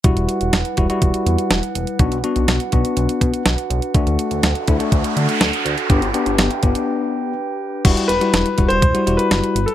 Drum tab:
CC |----------------|----------------|----------------|----------------|
HH |xxxxxxxxxxxxxxxx|xxxxxxxxxxxxxxxx|xxxxxxxxxxxxxxxx|xxxxxxxx--------|
SD |----o-------o---|----o-------o---|----o-------o---|----o-----------|
BD |o-----o-o-------|o-----o---o-----|o-----o-o-------|o-----o---------|

CC |x---------------|
HH |xxxxxxxxxxxxxxxx|
SD |----o-------o---|
BD |o-----o-o-------|